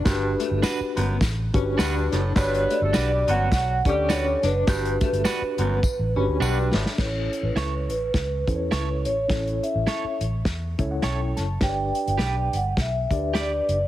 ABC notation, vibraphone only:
X:1
M:4/4
L:1/16
Q:"Swing" 1/4=104
K:Amix
V:1 name="Vibraphone"
z16 | c2 d4 f2 f2 d2 z2 B2- | B12- B2 z2 | c3 B3 B8 c2- |
c2 e4 z8 z2 | g3 g3 f2 e4 d4 |]